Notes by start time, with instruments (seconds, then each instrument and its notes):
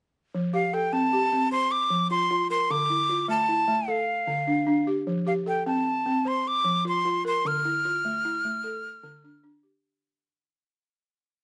0.35 balafon F3
0.54 balafon G4, flute F5
0.73 balafon A4, flute G5
0.93 balafon C4, flute A5
1.13 balafon G4
1.32 balafon C4
1.52 balafon C5, flute C6
1.71 flute D6
1.90 balafon F3
2.11 balafon F4, flute C6
2.31 balafon F4
2.50 balafon A#4, flute C6
2.71 balafon D3, flute D6
2.90 balafon E4
3.09 balafon F4
3.28 balafon A3, flute A5
3.49 balafon E4
3.68 balafon A3
3.88 balafon A4, flute F5
4.27 balafon D3
4.47 balafon D4
4.67 balafon D4
4.87 balafon G4
5.07 balafon F3
5.27 balafon G4, flute F5
5.46 balafon A4, flute G5
5.66 balafon C4, flute A5
6.06 balafon C4
6.25 balafon C5, flute C6
6.48 flute D6
6.64 balafon F3
6.85 balafon F4, flute C6
7.05 balafon F4
7.25 balafon A#4, flute C6
7.45 balafon D3, flute F6
7.65 balafon E4
7.85 balafon F4
8.05 balafon A3
8.25 balafon E4
8.45 balafon A3
8.64 balafon A4
9.03 balafon D3
9.24 balafon D4
9.44 balafon D4
9.63 balafon G4